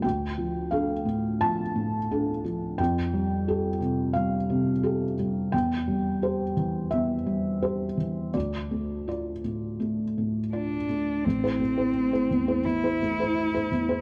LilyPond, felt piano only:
\new Staff \with { instrumentName = "Felt piano" } { \time 4/4 \key d \minor \tempo 4 = 86 << { g''4 f''4 a''2 | g''2 f''4. r8 | g''2 e''2 | d''2.~ d''8 r8 |
r1 | } \\ { d,8 f8 <d' a'>8 a,8 f8 a,8 <d' a'>8 f8 | f,8 g8 <g' a'>8 c8 g8 c8 <g' a'>8 g8 | e,8 g8 <g' c''>8 e8 e,8 g8 <g' c''>8 e8 | d,8 a8 <f' d''>8 a,8 a8 a,8 <f' d''>8 a8 |
a,,16 <e' c''>16 a16 <e' c''>8 <e' c''>16 e,16 <e' c''>16 e,16 <e' c''>16 a16 <e' c''>8 <e' c''>16 e,16 <e' c''>16 | } >> }